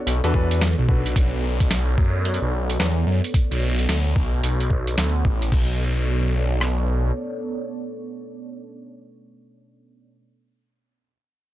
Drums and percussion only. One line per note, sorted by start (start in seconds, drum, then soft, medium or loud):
0.07 closed hi-hat medium
0.24 closed hi-hat soft
0.34 kick medium
0.51 closed hi-hat medium
0.61 snare loud
0.61 closed hi-hat medium
0.89 kick loud
1.06 closed hi-hat soft
1.16 kick loud
1.16 closed hi-hat medium
1.60 kick loud
1.60 closed hi-hat soft
1.71 snare loud
1.71 closed hi-hat medium
1.98 kick loud
2.25 closed hi-hat medium
2.34 closed hi-hat soft
2.70 closed hi-hat medium
2.80 snare loud
2.80 closed hi-hat medium
3.24 closed hi-hat soft
3.34 kick loud
3.34 closed hi-hat medium
3.52 closed hi-hat soft
3.79 closed hi-hat soft
3.89 snare loud
3.89 closed hi-hat medium
4.16 kick loud
4.43 closed hi-hat medium
4.60 closed hi-hat soft
4.70 kick medium
4.87 closed hi-hat soft
4.98 snare loud
4.98 closed hi-hat medium
5.25 kick loud
5.42 closed hi-hat soft
5.52 kick loud
5.52 crash medium
6.61 cross-stick medium